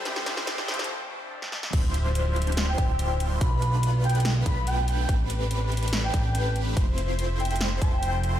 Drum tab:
CC |--------------------------------|x-------------------------------|--------------------------------|--------------------------------|
HH |x---x---x---xxxx----------------|x---x---x---xxxxx---x---x---x---|x---x---x---xxxxx---x---x---x---|x---x---x---xxxxx---x---x---x---|
SD |o-o-o-o-o-o-o-o-----------o-o-o-|----------------o---------------|----------------o---------------|----------------o---------------|
BD |--------------------------------|o-------------------o-----------|o-------------------o-----------|o-------------------o-----------|

CC |--------------------------------|
HH |x---x---x---xxxxx---x---x---x---|
SD |----------------o---------------|
BD |o-------------------o-----------|